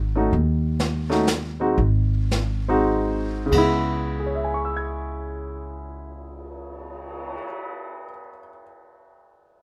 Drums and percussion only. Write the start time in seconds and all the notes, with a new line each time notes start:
0.33 brush sweep, kick
0.79 snare, hi-hat pedal
1.11 snare
1.27 snare, hi-hat pedal
1.78 brush sweep, kick
2.31 snare, hi-hat pedal
3.52 kick, crash
3.96 cymbal swell